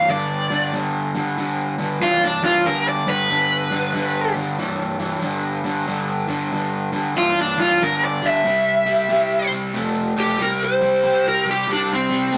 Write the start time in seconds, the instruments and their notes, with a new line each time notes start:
0.08 overdriven electric guitar G2 D3, lead electric guitar D5
0.50 overdriven electric guitar G2 D3
0.73 overdriven electric guitar G2 D3
1.15 overdriven electric guitar G2 D3
1.38 overdriven electric guitar G2 D3
1.78 overdriven electric guitar G2 D3
2.01 overdriven electric guitar G2 E3, lead electric guitar F4
2.25 lead electric guitar D4
2.42 overdriven electric guitar G2 E3, lead electric guitar F4
2.65 overdriven electric guitar G2 D3, lead electric guitar A#4
2.89 lead electric guitar D5
3.07 overdriven electric guitar G2 D3, lead electric guitar B4
3.30 overdriven electric guitar G2 D3
3.70 overdriven electric guitar G2 D3
3.94 overdriven electric guitar G2 D3
4.35 overdriven electric guitar G2 D3
4.58 overdriven electric guitar G2 E3
4.99 overdriven electric guitar G2 E3
5.22 overdriven electric guitar G2 D3
5.64 overdriven electric guitar G2 D3
5.87 overdriven electric guitar G2 D3
6.28 overdriven electric guitar G2 D3
6.52 overdriven electric guitar G2 D3
6.92 overdriven electric guitar G2 D3
7.16 overdriven electric guitar G2 E3, lead electric guitar F4
7.41 lead electric guitar D4
7.57 overdriven electric guitar G2 E3, lead electric guitar F4
7.81 overdriven electric guitar G2 D3, lead electric guitar A#4
8.05 lead electric guitar D5
8.22 overdriven electric guitar G2 D3
8.27 lead electric guitar E5
8.45 overdriven electric guitar C3 G3
8.86 overdriven electric guitar C3 G3
9.09 overdriven electric guitar C3 G3
9.51 overdriven electric guitar C3 G3
9.74 overdriven electric guitar C3 A3
10.16 overdriven electric guitar C3 A3, lead electric guitar G4
10.39 overdriven electric guitar C3 G3, lead electric guitar A#4
10.65 lead electric guitar C5
10.81 overdriven electric guitar C3 G3
11.03 overdriven electric guitar C3 G3
11.28 lead electric guitar A#4
11.45 overdriven electric guitar C3 G3
11.51 lead electric guitar G4
11.68 overdriven electric guitar C3 G3
11.72 lead electric guitar D4
11.94 lead electric guitar C4
12.10 overdriven electric guitar C3 G3
12.32 overdriven electric guitar C3 A3